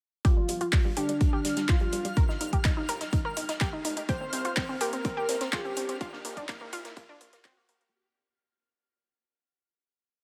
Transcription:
0.25 G1 F4 G4 F6, kick, closed hi-hat, riser
0.37 G3
0.48 G1 G3, closed hi-hat, open hi-hat
0.61 F4, closed hi-hat
0.72 G1 G3, kick, snare, clap, closed hi-hat, open hi-hat
0.85 G1 G3
0.97 G1 D4 G4, closed hi-hat, open hi-hat
1.09 G3, closed hi-hat
1.21 G3, kick, closed hi-hat
1.33 G4
1.45 G1 G3, snare, closed hi-hat, open hi-hat
1.56 G3, snare, closed hi-hat
1.68 F4, kick, snare, clap, closed hi-hat
1.80 G3, closed hi-hat
1.92 G1 G3, closed hi-hat, open hi-hat
2.05 G3, closed hi-hat
2.17 G1 A#4, kick, closed hi-hat
2.29 D#4, snare
2.41 G1 D#4, closed hi-hat, open hi-hat
2.53 G4, kick, closed hi-hat
2.64 G1 D#4, kick, snare, clap, closed hi-hat
2.77 G1 D#4
2.89 G1 A#4, closed hi-hat, open hi-hat
3.01 D#4, snare, closed hi-hat
3.13 G1 D#4, kick, closed hi-hat
3.25 A#4
3.37 G1 D#4, closed hi-hat, open hi-hat
3.49 D#4, snare, closed hi-hat
3.60 G1 G4, kick, snare, clap, closed hi-hat
3.73 D#4
3.85 G1 D#4, closed hi-hat, open hi-hat
3.97 D#4, closed hi-hat
4.08 C2 G4 C5, kick, closed hi-hat
4.21 C4
4.33 C2 C4, closed hi-hat, open hi-hat
4.45 F4, closed hi-hat
4.56 C2 C4, kick, snare, clap, closed hi-hat, open hi-hat
4.69 C2 C4
4.81 C2 G4 A#4, closed hi-hat, open hi-hat
4.93 C4, closed hi-hat
5.05 C2 C4, kick, closed hi-hat
5.17 G4
5.29 C2 C4, snare, closed hi-hat, open hi-hat
5.41 C4, snare, closed hi-hat
5.53 C2 F4 G4, kick, snare, clap, closed hi-hat
5.65 C4, closed hi-hat
5.77 C2 C4, closed hi-hat, open hi-hat
5.89 C4, closed hi-hat
6.01 A#1 F4, kick, closed hi-hat
6.13 A#3, snare
6.25 A#1 A#3, closed hi-hat, open hi-hat
6.37 D4, kick, closed hi-hat
6.49 A#1 A#3, kick, snare, clap, closed hi-hat
6.61 A#1 A#3
6.72 A#1 F4, closed hi-hat, open hi-hat
6.85 A#3, snare, closed hi-hat
6.96 A#1 A#3, kick, closed hi-hat
7.09 D4
7.21 A#1 A#3, closed hi-hat, open hi-hat
7.33 A#3, snare, closed hi-hat
7.45 C4, kick, snare, clap, closed hi-hat
7.57 A#3
7.69 A#1 A#3, closed hi-hat, open hi-hat
7.81 A#3, closed hi-hat

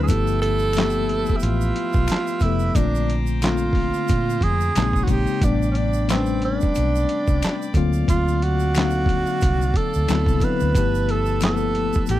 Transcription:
Already playing: F#3 C4 D4 E4 B4 E6
0.03 G#4
0.07 G1 F3 A3 B3 E4 A4 B4 E5 G5, kick, closed hi-hat, shaker
0.11 G4
0.27 shaker
0.42 A4, closed hi-hat
0.59 shaker
0.73 F3 A3 A#3 E5, finger snap, closed hi-hat, shaker
0.78 G4, snare, clap
0.83 B3
0.90 shaker
1.09 closed hi-hat
1.26 kick, shaker
1.37 E4, shaker
1.43 A1 F4, closed hi-hat
1.61 shaker
1.76 closed hi-hat
1.93 B1, kick, shaker
2.08 finger snap, snare, closed hi-hat, shaker
2.13 clap
2.27 shaker
2.40 F1 F3 A3 B3 E4, kick, closed hi-hat, shaker
2.44 E4 A4
2.59 shaker
2.75 A#1 D3 A3 A#3 C4 D4 F4 C5 A#5 D6, kick, closed hi-hat, shaker
2.95 shaker
3.10 closed hi-hat
3.27 shaker
3.42 D3 A3 A#3 C4 F4, finger snap, snare, clap, closed hi-hat, shaker
3.58 shaker
3.73 kick, open hi-hat
3.94 shaker
4.08 A#2, kick, closed hi-hat, shaker
4.30 shaker
4.41 F2 G#4, kick, closed hi-hat
4.61 shaker
4.75 A#1 C#3 G#3 A#3 C4 C#5 A#5 C6 D#6, finger snap, snare, clap, closed hi-hat, shaker
4.79 D#4
4.93 kick, shaker
5.04 F#4, kick, closed hi-hat
5.08 A#1 C#3 G#3 A#3 C4 D#4 G4, shaker
5.27 shaker
5.42 A1 C3 G3 A3 B3 D4 D5 G5 B5 D6, kick, closed hi-hat, shaker
5.62 shaker
5.72 C#4, closed hi-hat
5.78 D4
5.93 shaker
6.08 G3 A3 C4 C#4 B4, finger snap, snare, clap, closed hi-hat, shaker
6.17 D4
6.26 shaker
6.42 D4, closed hi-hat
6.61 kick, shaker
6.75 B1, closed hi-hat, shaker
6.95 shaker
7.09 closed hi-hat
7.27 C2, kick, shaker
7.42 finger snap, snare, clap, closed hi-hat, shaker
7.62 shaker
7.74 D2 D3 F#3 A#3 C4 F4 F5 D6, kick, closed hi-hat, shaker
7.93 shaker
8.08 D2 F4, kick, closed hi-hat, shaker
8.28 shaker
8.42 F#4, closed hi-hat
8.60 shaker
8.75 D3 F#3 A#3 C4 D#4, finger snap, snare, closed hi-hat, shaker
8.79 clap
8.84 F5
8.90 shaker
9.06 kick, closed hi-hat
9.26 shaker
9.41 C2, kick, closed hi-hat, shaker
9.62 shaker
9.74 A4, kick, closed hi-hat
9.94 D2, shaker
10.08 D2 D3 F#3 B3 C4 E4 B5 E6, finger snap, snare, clap, closed hi-hat, shaker
10.26 C2, kick, shaker
10.40 D3 F#3 B3 C4 B4, kick, closed hi-hat, shaker
10.45 E4
10.60 D2, shaker
10.74 G1 F3 A3 B3 E4 G4 B4 E5 A5, kick, closed hi-hat, shaker
10.95 shaker
11.09 A4, closed hi-hat
11.26 shaker
11.41 F3 A3 A#3 E4 A4, finger snap, snare, clap, closed hi-hat, shaker
11.49 B3
11.57 shaker
11.75 closed hi-hat
11.93 kick, shaker
12.06 A1, closed hi-hat, shaker
12.11 G4

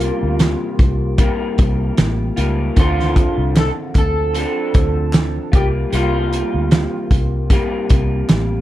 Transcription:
Already playing: C3 G3 A#3 F4
0.00 closed hi-hat
0.23 D2
0.39 snare, clap, closed hi-hat
0.79 C2, kick, closed hi-hat
1.18 C3 G3 A#3 F4, kick, closed hi-hat
1.58 C2, kick, closed hi-hat
1.97 A1, snare, clap, closed hi-hat
2.36 C#2 G3 A#3 F4, closed hi-hat
2.76 D2 D3 F3 C4 D4 F4, kick, closed hi-hat
2.80 A4
2.99 snare
3.16 kick, closed hi-hat
3.38 C2
3.56 A4, snare, clap, closed hi-hat
3.95 D2 A4, kick, clap, closed hi-hat
4.34 F3 C4 D4 A4, closed hi-hat
4.74 D2, kick, closed hi-hat
5.13 snare, clap, closed hi-hat
5.52 C2 G3 A#3 F4 G4, kick, closed hi-hat
5.90 C2 C3 G3 A#3, closed hi-hat
5.95 F4
6.33 closed hi-hat
6.54 D2
6.71 snare, clap, closed hi-hat
7.11 C2, kick, closed hi-hat
7.50 C3 G3 A#3 F4, kick, closed hi-hat
7.89 C2, kick, closed hi-hat
8.29 A1, snare, clap, closed hi-hat

